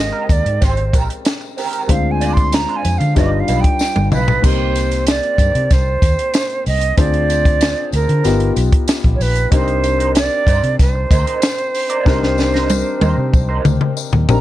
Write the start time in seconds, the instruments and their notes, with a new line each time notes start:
Already playing: fingered electric bass G#1, grand piano G#3 C4 D#4 G4 A#4, flute D#5
0.13 clean electric guitar C4 G4 A#4
0.29 fingered electric bass D#2, flute D5, muted clean electric guitar stroke, kick, closed hi-hat, tambourine
0.45 fingered electric bass G#2, muted clean electric guitar stroke, closed hi-hat
0.61 fingered electric bass G#1, clean electric guitar C4 G4 C5, flute C5, kick, snare, closed hi-hat, tambourine
0.77 muted clean electric guitar stroke, closed hi-hat
0.93 fingered electric bass A#1, clean electric guitar C4 G4 A#4, kick, closed hi-hat, tambourine
1.09 muted clean electric guitar stroke, closed hi-hat
1.25 muted clean electric guitar stroke, snare, closed hi-hat, tambourine
1.41 muted clean electric guitar stroke, tambourine
1.57 clean electric guitar C4 G4 A#4, open hi-hat, tambourine
1.73 clean electric guitar C4 G4 A#4, closed hi-hat, tambourine
1.88 fingered electric bass D2, grand piano G#3 C4 D4 F4 C5, flute F5, kick, closed hi-hat, tambourine
2.11 flute G#5
2.21 clean electric guitar D4 F4 D5, closed hi-hat, tambourine
2.33 flute C6, kick, closed hi-hat, tambourine
2.52 flute A#5, muted clean electric guitar stroke, snare, closed hi-hat, tambourine
2.69 clean electric guitar D4 F4 C5, closed hi-hat
2.76 flute G#5
2.84 fingered electric bass F2, muted clean electric guitar stroke, closed hi-hat, tambourine
2.98 fingered electric bass D3, flute F5, muted clean electric guitar stroke, closed hi-hat, tambourine
3.15 fingered electric bass G1, grand piano G3 D4 D#4 F4 B4, clean electric guitar D#4 F4 D5, flute D#5, kick, snare, closed hi-hat, tambourine
3.32 muted clean electric guitar stroke
3.40 flute F5
3.48 fingered electric bass B1, clean electric guitar D#4 F4 B4, closed hi-hat, tambourine
3.61 flute G5, muted clean electric guitar stroke, kick, closed hi-hat
3.79 muted clean electric guitar stroke, snare, tambourine
3.96 fingered electric bass G1, muted clean electric guitar stroke, high tom, tambourine
4.12 fingered electric bass B1, clean electric guitar D#4 F4 B4, flute B4, mid tom, tambourine
4.28 clean electric guitar D#4 F4 B4, floor tom, tambourine
4.42 fingered electric bass C2, grand piano A#3 C4 D#4 G4 C5, flute C5, kick, crash, tambourine
4.75 closed hi-hat, tambourine
4.91 closed hi-hat, tambourine
5.07 flute D5, snare, closed hi-hat, tambourine
5.23 closed hi-hat
5.38 fingered electric bass G2, kick, closed hi-hat, tambourine
5.55 fingered electric bass C3, closed hi-hat
5.71 fingered electric bass C2, flute C5, kick, snare, closed hi-hat, tambourine
6.02 fingered electric bass D#2, kick, closed hi-hat, tambourine
6.19 closed hi-hat
6.34 snare, closed hi-hat, tambourine
6.50 closed hi-hat
6.66 fingered electric bass C2, flute D#5, open hi-hat, tambourine
6.81 closed hi-hat
6.97 fingered electric bass D2, grand piano C4 D4 F4 G#4 C5, flute D5, kick, closed hi-hat, tambourine
7.14 closed hi-hat
7.30 closed hi-hat, tambourine
7.45 kick, closed hi-hat, tambourine
7.61 snare, closed hi-hat, tambourine
7.92 fingered electric bass D2, flute A#4, closed hi-hat, tambourine
8.09 fingered electric bass D3, closed hi-hat
8.24 fingered electric bass G1, grand piano B3 D#4 F4 G4, snare, closed hi-hat, tambourine
8.40 closed hi-hat
8.56 fingered electric bass B1, closed hi-hat, tambourine
8.72 kick, closed hi-hat
8.88 snare, closed hi-hat, tambourine
9.04 fingered electric bass A#1, kick, closed hi-hat
9.15 flute C#5
9.20 fingered electric bass A#1, flute B4, open hi-hat, tambourine
9.35 closed hi-hat, tambourine
9.51 fingered electric bass C2, grand piano C4 D4 D#4 G4 A#4, clean electric guitar D#4 A#4 C5, flute C5, kick, closed hi-hat, tambourine
9.68 muted clean electric guitar stroke, closed hi-hat
9.84 muted clean electric guitar stroke, closed hi-hat, tambourine
9.99 clean electric guitar D#4 A#4 C5, closed hi-hat
10.15 flute D5, muted clean electric guitar stroke, snare, closed hi-hat, tambourine
10.47 fingered electric bass G2, clean electric guitar D#4 A#4 C5, kick, closed hi-hat, tambourine
10.63 fingered electric bass C3, muted clean electric guitar stroke, closed hi-hat
10.79 fingered electric bass C2, flute C5, muted clean electric guitar stroke, kick, snare, closed hi-hat, tambourine
10.95 muted clean electric guitar stroke
11.11 fingered electric bass D2, clean electric guitar D#4 A#4 C5, kick, closed hi-hat, tambourine
11.26 clean electric guitar D#4 A#4 C5, closed hi-hat
11.42 muted clean electric guitar stroke, snare, closed hi-hat, tambourine
11.58 muted clean electric guitar stroke, closed hi-hat, tambourine
11.75 open hi-hat, tambourine
11.90 clean electric guitar D#4 A#4 D5, closed hi-hat
12.05 fingered electric bass C2, grand piano C4 D4 D#4 G4 A#4, clean electric guitar D#4 A#4 C5, kick, snare, tambourine
12.22 muted clean electric guitar stroke, snare
12.38 muted clean electric guitar stroke, snare, tambourine
12.53 clean electric guitar D#4 A#4 C5, snare, tambourine
12.69 muted clean electric guitar stroke, high tom, tambourine
13.01 fingered electric bass D#2, clean electric guitar D#4 A#4 C5, high tom, tambourine
13.17 fingered electric bass C3, muted clean electric guitar stroke
13.33 fingered electric bass C2, muted clean electric guitar stroke, kick, tambourine
13.49 clean electric guitar D#4 A#4 C5
13.64 fingered electric bass D2, muted clean electric guitar stroke, mid tom, tambourine
13.81 muted clean electric guitar stroke, mid tom
13.97 muted clean electric guitar stroke, tambourine
14.13 fingered electric bass D#2, muted clean electric guitar stroke, floor tom
14.29 fingered electric bass A#1, grand piano C4 D4 D#4 G4 A#4, flute A#5, floor tom, tambourine